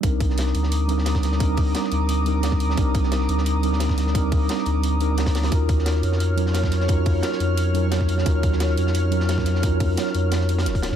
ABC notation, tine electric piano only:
X:1
M:4/4
L:1/8
Q:1/4=175
K:Cm
V:1 name="Tine electric piano"
[G,CDEB]4- [G,CDEB] [G,CDEB] z2 | [G,CDEB]4- [G,CDEB] [G,CDEB] z2 | [G,CDEB]4- [G,CDEB] [G,CDEB] z2 | [G,CDEB]4- [G,CDEB] [G,CDEB] z2 |
[_DEF_GB]4- [DEFGB] [_G,DEFB] z2 | [_DEF_GB]4- [DEFGB] [_G,DEFB] z2 | [_DEF_GB]4- [DEFGB] [_G,DEFB] z2 | [_DEF_GB]4- [DEFGB] z3 |]